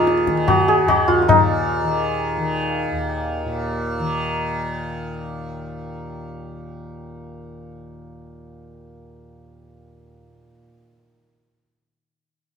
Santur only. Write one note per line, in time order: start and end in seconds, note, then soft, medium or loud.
0.00 1.28 D#4 medium
0.00 0.54 F4 loud
0.00 0.68 G#4 loud
0.00 2.04 A#4 medium
0.48 0.88 F#4 loud
0.68 3.72 G#4 loud
0.89 1.14 F#4 loud
1.08 1.22 F4 loud
1.22 4.58 F4 medium
1.28 4.89 D#4 medium